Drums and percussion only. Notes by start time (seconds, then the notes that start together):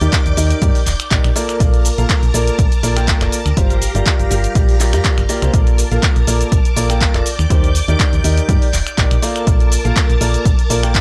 0.01 closed hi-hat, shaker
0.13 kick, clap, closed hi-hat, shaker
0.26 closed hi-hat, shaker
0.37 open hi-hat, shaker
0.51 closed hi-hat, shaker
0.62 kick, closed hi-hat, shaker
0.75 open hi-hat, shaker
0.86 clap, open hi-hat, shaker
1.00 finger snap, closed hi-hat, shaker
1.11 kick, clap, closed hi-hat, shaker
1.24 finger snap, closed hi-hat, shaker
1.36 open hi-hat, shaker
1.49 finger snap, closed hi-hat, shaker
1.60 kick, closed hi-hat, shaker
1.74 closed hi-hat, shaker
1.85 open hi-hat, shaker
1.98 closed hi-hat, shaker
2.09 kick, clap, closed hi-hat, shaker
2.23 closed hi-hat, shaker
2.34 open hi-hat, shaker
2.47 closed hi-hat, shaker
2.59 kick, closed hi-hat, shaker
2.72 closed hi-hat, shaker
2.83 open hi-hat, shaker
2.96 finger snap, closed hi-hat, shaker
3.08 kick, clap, closed hi-hat, shaker
3.21 finger snap, clap, closed hi-hat, shaker
3.32 open hi-hat, shaker
3.46 finger snap, shaker
3.57 kick, closed hi-hat, shaker
3.70 closed hi-hat, shaker
3.82 open hi-hat, shaker
3.95 closed hi-hat, shaker
4.06 kick, clap, closed hi-hat, shaker
4.19 closed hi-hat, shaker
4.31 open hi-hat, shaker
4.44 closed hi-hat, shaker
4.55 kick, closed hi-hat, shaker
4.69 open hi-hat, shaker
4.80 clap, open hi-hat, shaker
4.93 finger snap, closed hi-hat, shaker
5.04 kick, clap, closed hi-hat, shaker
5.18 finger snap, closed hi-hat, shaker
5.29 open hi-hat, shaker
5.42 finger snap, closed hi-hat, shaker
5.54 kick, closed hi-hat, shaker
5.67 closed hi-hat, shaker
5.78 open hi-hat, shaker
5.92 closed hi-hat, shaker
6.03 kick, clap, closed hi-hat, shaker
6.16 closed hi-hat, shaker
6.27 open hi-hat, shaker
6.41 closed hi-hat, shaker
6.52 kick, closed hi-hat, shaker
6.65 closed hi-hat, shaker
6.77 open hi-hat, shaker
6.90 finger snap, closed hi-hat, shaker
7.01 kick, clap, closed hi-hat, shaker
7.15 finger snap, clap, closed hi-hat, shaker
7.26 open hi-hat, shaker
7.39 finger snap, shaker
7.50 kick, closed hi-hat, shaker
7.64 closed hi-hat, shaker
7.75 open hi-hat, shaker
7.88 closed hi-hat, shaker
8.00 kick, clap, closed hi-hat, shaker
8.13 closed hi-hat, shaker
8.24 open hi-hat, shaker
8.37 closed hi-hat, shaker
8.49 kick, closed hi-hat, shaker
8.62 open hi-hat, shaker
8.73 clap, open hi-hat, shaker
8.87 finger snap, closed hi-hat, shaker
8.98 kick, clap, closed hi-hat, shaker
9.11 finger snap, closed hi-hat, shaker
9.22 open hi-hat, shaker
9.36 finger snap, closed hi-hat, shaker
9.47 kick, closed hi-hat, shaker
9.60 closed hi-hat, shaker
9.72 open hi-hat, shaker
9.85 closed hi-hat, shaker
9.96 kick, clap, closed hi-hat, shaker
10.10 closed hi-hat, shaker
10.21 open hi-hat, shaker
10.34 closed hi-hat, shaker
10.45 kick, closed hi-hat, shaker
10.59 closed hi-hat, shaker
10.70 open hi-hat, shaker
10.83 finger snap, closed hi-hat, shaker
10.95 kick, clap, closed hi-hat, shaker